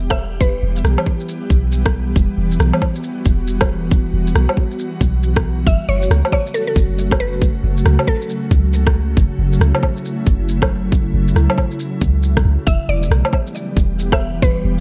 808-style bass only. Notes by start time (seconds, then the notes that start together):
Already playing: E1
0.63 E1
0.84 B1
1.50 B1
2.16 E1
2.38 E1
2.60 B1
3.26 E1
4.13 E1
4.35 B1
5.01 B1
5.67 F#1
5.88 F#1
6.10 C#2
6.76 F#1
7.64 F#1
7.86 C#2
8.51 C#2
9.17 F#1
9.39 F#1
9.60 C#2
10.27 F#1
11.14 F#1
11.36 C#2
12.01 C#2
12.37 B1
12.45 C#2
12.67 E1
12.89 E1
13.11 B1
13.77 E1
14.65 E1